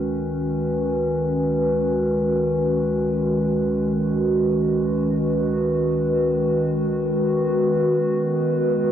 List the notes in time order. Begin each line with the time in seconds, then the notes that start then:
Already playing: C#2 D#3 G#3 C#4 F#4 B4
7.24 B3
7.91 C#2